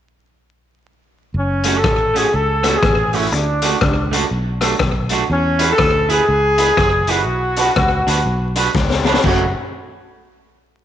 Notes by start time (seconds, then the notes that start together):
1.34 F#1 C#4
1.63 A3 C#4 F#4, closed hi-hat
1.76 A4
1.84 A1, kick, cross-stick
2.14 A3 C#4 F#4 G#4, closed hi-hat
2.33 C#2 A4, muted clean electric guitar stroke
2.63 A3 C#4 F#4, cross-stick, closed hi-hat
2.74 G#4
2.83 A1, kick, cross-stick
3.13 A3 C#4 E4 F#4, open hi-hat
3.32 D2 D4, hi-hat pedal
3.62 A3 D4 F#4, closed hi-hat
3.81 C#2, kick, cross-stick
4.11 A3 D4 F#4, closed hi-hat
4.31 B1
4.61 A3 D4 F#4, cross-stick, closed hi-hat
4.79 B1, kick, cross-stick
5.09 A3 D4 F#4, closed hi-hat
5.30 E2 C#4
5.59 E4 G#4 B4, closed hi-hat
5.70 A4
5.78 D2, kick, cross-stick
6.09 E4 G#4 B4, closed hi-hat
6.28 C#2, muted clean electric guitar stroke
6.58 E4 G#4 B4, closed hi-hat
6.77 F#1, kick, cross-stick
7.07 E4 F#4 G#4 B4, closed hi-hat
7.27 B1
7.56 D4 F#4 B4, closed hi-hat
7.76 C#2, kick, cross-stick
8.07 D2 D4 F#4 B4, closed hi-hat
8.26 B1
8.56 D4 F#4 B4, closed hi-hat
8.75 C#2, kick, snare
8.90 snare
9.05 D4 F#4 B4, snare
9.14 snare
9.23 F#1 A3 C#4 F#4, kick, crash